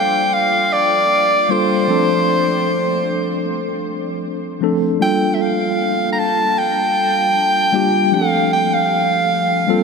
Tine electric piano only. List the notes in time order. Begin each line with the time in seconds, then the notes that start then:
Already playing: G3 A#3 D4 F4 A4
1.49 G3 A#3 D4 F4 A4
1.88 F3 A3 C4 D4 A4
4.61 F3 A3 C4 D4 A4
4.99 G3 A#3 D4 F4 A4
7.72 G3 A#3 D4 F4 G4
8.12 F3 A3 C4 D4 G4
8.21 A4
9.67 G3 A#3 C4 F4 A4